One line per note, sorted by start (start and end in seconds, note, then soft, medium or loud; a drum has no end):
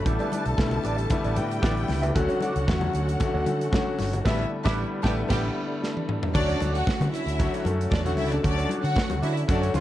0.05 0.17 A1 loud
0.05 0.39 D3 medium
0.05 0.39 G3 medium
0.05 0.39 A3 medium
0.05 2.14 A3 medium
0.05 0.39 B3 medium
0.05 2.14 D4 medium
0.05 0.40 E4 loud
0.05 2.14 G4 medium
0.05 1.35 A4 medium
0.05 1.34 A5 medium
0.05 muted clean electric guitar stroke soft
0.05 kick loud
0.05 closed hi-hat medium
0.05 muted conga soft
0.19 0.31 G4 medium
0.19 0.32 B4 medium
0.19 0.33 D5 medium
0.19 closed hi-hat soft
0.19 high conga medium
0.32 0.48 G4 medium
0.32 0.47 B4 medium
0.32 0.45 D5 medium
0.32 closed hi-hat medium
0.32 muted conga soft
0.32 high conga medium
0.46 0.56 B1 medium
0.46 muted clean electric guitar stroke soft
0.46 closed hi-hat soft
0.58 0.79 B1 loud
0.58 0.92 D3 medium
0.58 0.92 G3 medium
0.58 0.92 A3 medium
0.58 0.92 B3 medium
0.58 0.92 E4 loud
0.58 kick loud
0.58 snare loud
0.58 muted conga soft
0.71 muted clean electric guitar stroke medium
0.71 closed hi-hat soft
0.71 high conga medium
0.71 low conga medium
0.84 1.05 A1 medium
0.84 1.04 G4 medium
0.84 0.99 B4 medium
0.84 0.98 D5 loud
0.84 closed hi-hat medium
0.84 muted conga soft
0.98 muted clean electric guitar stroke soft
0.98 closed hi-hat medium
1.10 1.44 D3 medium
1.10 1.44 G3 medium
1.10 1.44 A3 medium
1.10 1.45 B3 medium
1.10 1.45 E4 loud
1.10 muted clean electric guitar stroke soft
1.10 kick loud
1.10 closed hi-hat medium
1.10 low conga medium
1.24 1.39 A1 medium
1.24 1.36 G4 medium
1.24 1.37 B4 medium
1.24 1.38 D5 medium
1.24 closed hi-hat soft
1.36 1.58 A2 medium
1.36 2.14 G4 medium
1.36 1.53 G4 medium
1.36 1.51 B4 medium
1.36 1.50 D5 medium
1.36 2.14 G5 medium
1.36 closed hi-hat medium
1.36 muted conga soft
1.36 high conga medium
1.51 muted clean electric guitar stroke medium
1.51 closed hi-hat medium
1.62 1.83 A1 loud
1.62 1.96 D3 loud
1.62 1.96 G3 medium
1.62 1.96 A3 loud
1.62 1.97 B3 medium
1.62 1.97 E4 loud
1.62 1.83 G4 medium
1.62 1.76 B4 medium
1.62 1.75 D5 medium
1.62 kick loud
1.62 snare loud
1.62 high conga medium
1.77 muted clean electric guitar stroke soft
1.77 closed hi-hat soft
1.88 2.10 C#2 medium
1.88 muted clean electric guitar stroke soft
1.88 snare soft
1.88 open hi-hat medium
1.88 high conga medium
2.02 2.14 G4 medium
2.02 2.15 B4 medium
2.02 2.16 E5 medium
2.02 closed hi-hat soft
2.02 low conga medium
2.15 2.26 D2 loud
2.15 2.49 D3 loud
2.15 4.23 D3 medium
2.15 2.49 F#3 medium
2.15 2.49 A3 medium
2.15 2.49 C#4 medium
2.15 4.24 C#4 medium
2.15 4.21 F#4 medium
2.15 4.23 F#4 medium
2.15 2.50 F#4 loud
2.15 4.21 F#5 medium
2.15 muted clean electric guitar stroke soft
2.15 kick loud
2.15 closed hi-hat medium
2.15 muted conga soft
2.29 2.40 D4 medium
2.29 2.41 F#4 medium
2.29 2.42 C#5 medium
2.29 closed hi-hat soft
2.29 high conga medium
2.41 2.57 D4 medium
2.41 2.56 F#4 medium
2.41 2.55 D5 medium
2.41 closed hi-hat medium
2.41 muted conga soft
2.41 high conga medium
2.56 2.66 C#2 medium
2.56 closed hi-hat soft
2.67 2.89 E2 loud
2.67 3.01 D3 medium
2.67 3.01 F#3 medium
2.67 3.02 A3 medium
2.67 3.02 C#4 medium
2.67 3.02 F#4 loud
2.67 muted clean electric guitar stroke soft
2.67 kick loud
2.67 snare loud
2.81 muted clean electric guitar stroke soft
2.81 high conga medium
2.81 low conga medium
2.94 3.15 D2 medium
2.94 closed hi-hat medium
2.94 muted conga soft
3.07 muted clean electric guitar stroke soft
3.07 closed hi-hat medium
3.20 3.54 D3 medium
3.20 3.54 F#3 medium
3.20 3.54 A3 medium
3.20 3.54 C#4 medium
3.20 3.54 F#4 loud
3.20 muted clean electric guitar stroke soft
3.20 kick loud
3.20 closed hi-hat medium
3.20 muted conga soft
3.20 low conga medium
3.34 3.44 D2 loud
3.34 3.45 D4 medium
3.34 3.46 F#4 medium
3.34 3.46 C#5 medium
3.46 3.67 D3 loud
3.46 closed hi-hat medium
3.46 muted conga soft
3.46 high conga medium
3.60 muted clean electric guitar stroke soft
3.60 closed hi-hat medium
3.72 4.06 D3 medium
3.72 4.06 F#3 medium
3.72 4.06 A3 medium
3.72 4.06 C#4 medium
3.72 4.07 F#4 loud
3.72 muted clean electric guitar stroke soft
3.72 kick loud
3.72 snare loud
3.72 muted conga soft
3.72 high conga medium
3.86 muted clean electric guitar stroke soft
3.99 4.20 G1 medium
3.99 snare soft
3.99 open hi-hat medium
3.99 high conga medium
4.13 muted clean electric guitar stroke medium
4.13 closed hi-hat soft
4.13 low conga medium
4.25 4.44 A1 loud
4.25 4.43 D3 loud
4.25 4.43 G3 medium
4.25 6.33 G3 medium
4.25 4.43 A3 medium
4.25 6.33 A3 medium
4.25 4.44 B3 loud
4.25 6.33 D4 medium
4.25 4.44 D4 medium
4.25 4.43 E4 loud
4.25 4.44 E4 loud
4.25 4.44 G4 medium
4.25 4.43 B4 medium
4.25 4.43 E5 loud
4.25 kick loud
4.25 snare loud
4.25 crash medium
4.64 4.83 A1 medium
4.64 4.83 D3 medium
4.64 4.83 G3 loud
4.64 4.83 A3 loud
4.64 4.83 B3 medium
4.64 4.82 D4 loud
4.64 4.83 E4 loud
4.64 4.83 G4 loud
4.64 4.83 B4 loud
4.64 4.83 E5 loud
4.64 kick loud
4.64 snare loud
5.03 5.22 A1 loud
5.03 5.22 D3 loud
5.03 5.22 G3 loud
5.03 5.22 A3 loud
5.03 5.22 B3 loud
5.03 5.21 D4 loud
5.03 5.22 E4 loud
5.03 5.22 G4 loud
5.03 5.22 B4 loud
5.03 5.22 G5 loud
5.03 kick loud
5.03 snare loud
5.28 5.48 A1 loud
5.28 5.47 D3 loud
5.28 5.48 G3 loud
5.28 5.48 A3 loud
5.28 5.48 B3 loud
5.28 5.48 D4 loud
5.28 5.48 G4 loud
5.28 5.47 B4 loud
5.28 5.48 G5 loud
5.28 kick loud
5.28 snare loud
5.28 crash medium
5.84 snare medium
5.97 high tom medium
6.09 mid tom medium
6.23 floor tom loud
6.34 6.55 D2 loud
6.34 7.01 D3 medium
6.34 9.80 D3 medium
6.34 7.01 F#3 medium
6.34 7.02 A3 medium
6.34 9.80 C#4 medium
6.34 7.02 C#4 medium
6.34 6.56 D4 loud
6.34 9.80 F#4 medium
6.34 7.02 F#4 medium
6.34 6.56 D5 loud
6.34 muted clean electric guitar stroke soft
6.34 kick loud
6.34 crash medium
6.34 muted conga soft
6.48 6.59 D4 medium
6.48 6.60 F#4 medium
6.48 6.62 C#5 medium
6.48 closed hi-hat soft
6.60 6.81 D2 loud
6.60 6.76 D4 medium
6.60 6.74 F#4 medium
6.60 6.73 D5 medium
6.60 closed hi-hat medium
6.60 high conga medium
6.74 7.11 F#4 loud
6.74 7.11 F#5 loud
6.74 muted clean electric guitar stroke soft
6.74 closed hi-hat soft
6.86 muted clean electric guitar stroke soft
6.86 kick loud
6.86 snare loud
6.86 muted conga soft
7.00 7.10 D3 loud
7.00 muted clean electric guitar stroke soft
7.00 closed hi-hat soft
7.00 high conga medium
7.00 low conga medium
7.13 7.62 E4 medium
7.13 7.62 E5 loud
7.13 closed hi-hat medium
7.13 muted conga soft
7.26 7.47 D2 medium
7.26 muted clean electric guitar stroke soft
7.26 closed hi-hat medium
7.38 7.56 D3 loud
7.38 7.57 F#3 loud
7.38 7.57 A3 medium
7.38 7.57 C#4 medium
7.38 7.57 F#4 loud
7.38 muted clean electric guitar stroke soft
7.38 kick loud
7.38 closed hi-hat medium
7.52 7.63 D4 medium
7.52 7.64 F#4 medium
7.52 7.64 C#5 medium
7.52 closed hi-hat medium
7.65 7.86 F#2 medium
7.65 7.90 D3 medium
7.65 7.90 F#3 medium
7.65 7.91 A3 medium
7.65 7.91 C#4 medium
7.65 7.91 A4 medium
7.65 closed hi-hat medium
7.65 muted conga soft
7.65 high conga medium
7.79 muted clean electric guitar stroke medium
7.79 closed hi-hat medium
7.91 8.17 E2 loud
7.91 8.03 D4 medium
7.91 8.03 D5 loud
7.91 muted clean electric guitar stroke soft
7.91 kick loud
7.91 snare loud
7.91 muted conga soft
7.91 high conga medium
8.05 8.30 D3 medium
8.05 8.30 F#3 medium
8.05 8.30 A3 medium
8.05 8.30 C#4 medium
8.05 8.16 F#4 medium
8.05 8.31 F#4 loud
8.05 8.16 F#5 medium
8.05 muted clean electric guitar stroke soft
8.05 closed hi-hat medium
8.17 8.38 C#2 medium
8.17 8.29 E4 loud
8.17 8.29 E5 loud
8.17 open hi-hat medium
8.17 muted conga soft
8.17 high conga medium
8.31 8.42 D4 medium
8.31 8.41 D5 medium
8.31 muted clean electric guitar stroke soft
8.31 closed hi-hat soft
8.31 low conga medium
8.43 8.65 D2 loud
8.43 9.10 D3 medium
8.43 9.10 F#3 medium
8.43 9.11 A3 medium
8.43 9.11 C#4 medium
8.43 8.65 D4 medium
8.43 9.11 F#4 medium
8.43 8.65 D5 loud
8.43 muted clean electric guitar stroke soft
8.43 kick loud
8.43 closed hi-hat medium
8.57 8.68 D4 medium
8.57 8.69 F#4 medium
8.57 8.70 C#5 medium
8.57 closed hi-hat soft
8.69 8.86 D4 medium
8.69 8.84 F#4 medium
8.69 8.83 C#5 medium
8.69 closed hi-hat medium
8.69 muted conga soft
8.69 high conga medium
8.83 8.93 D3 medium
8.83 9.20 F#4 loud
8.83 9.20 F#5 loud
8.83 muted clean electric guitar stroke soft
8.83 closed hi-hat soft
8.96 kick loud
8.96 snare loud
8.96 muted conga soft
9.10 9.20 D2 medium
9.10 muted clean electric guitar stroke soft
9.10 closed hi-hat soft
9.10 high conga medium
9.10 low conga medium
9.22 9.43 D3 medium
9.22 9.42 D4 medium
9.22 9.44 E4 medium
9.22 9.36 F#4 medium
9.22 9.35 C#5 medium
9.22 9.44 E5 medium
9.22 closed hi-hat medium
9.22 muted conga soft
9.36 muted clean electric guitar stroke soft
9.36 closed hi-hat medium
9.48 9.69 F#2 loud
9.48 9.65 D3 medium
9.48 9.66 F#3 medium
9.48 9.66 A3 medium
9.48 9.66 C#4 medium
9.48 9.60 D4 medium
9.48 9.66 F#4 loud
9.48 9.60 D5 medium
9.48 muted clean electric guitar stroke soft
9.48 kick loud
9.48 closed hi-hat medium
9.61 9.73 C#4 medium
9.61 9.73 D4 medium
9.61 9.74 F#4 medium
9.61 9.74 C#5 medium
9.61 9.73 C#5 loud
9.61 closed hi-hat medium
9.74 9.80 D2 loud
9.74 9.80 D3 medium
9.74 9.80 F#3 medium
9.74 9.80 A3 medium
9.74 9.80 C#4 medium
9.74 9.80 C#4 loud
9.74 9.80 D4 medium
9.74 9.80 F#4 loud
9.74 9.80 F#4 medium
9.74 9.80 C#5 loud
9.74 closed hi-hat medium
9.74 high conga medium